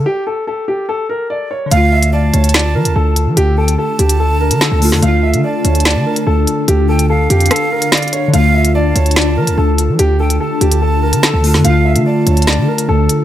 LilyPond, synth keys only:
\new Staff \with { instrumentName = "Synth keys" } { \time 4/4 \key d \minor \tempo 4 = 145 r1 | <d a f'>1~ | <d a f'>2.~ <d a f'>8 <d a f'>8 | <d a f'>1~ |
<d a f'>1 | <d a f'>1~ | <d a f'>2.~ <d a f'>8 <d a f'>8 | <d a f'>1 | }